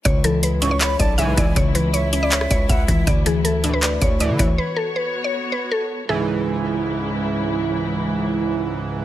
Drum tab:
HH |x-x-x-x-x-x-x-x-|x-x-x-x-x-x-x-x-|x-x-x-x-x-x-x-x-|----------------|
CP |--------x-------|--------x-------|--------x-------|----------------|
SD |----------------|---------r------|----------------|----------------|
BD |o---------o---o-|o---------o-o-o-|o---------o---o-|----------------|

HH |----------------|----------------|
CP |----------------|----------------|
SD |----------------|----------------|
BD |----------------|----------------|